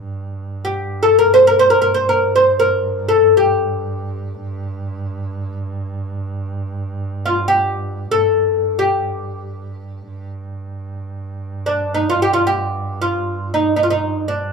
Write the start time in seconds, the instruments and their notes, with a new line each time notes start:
0.03 double bass G2
0.65 oud G4
1.03 oud A4
1.19 oud A#4
1.34 oud C5
1.47 oud A#4
1.59 oud C5
1.70 oud A#4
1.82 oud A#4
1.94 oud C5
2.09 oud A#4
2.36 oud C5
2.60 oud A#4
3.09 oud A4
3.37 oud G4
7.26 oud F4
7.48 oud G4
8.11 oud A4
8.79 oud G4
10.07 double bass G2
11.66 oud D4
11.94 oud D#4
12.10 oud F4
12.22 oud G4
12.33 oud F4
12.47 oud G4
13.02 oud F4
13.54 oud D#4
13.76 oud D#4
13.83 oud F4
13.90 oud D#4
14.28 oud D4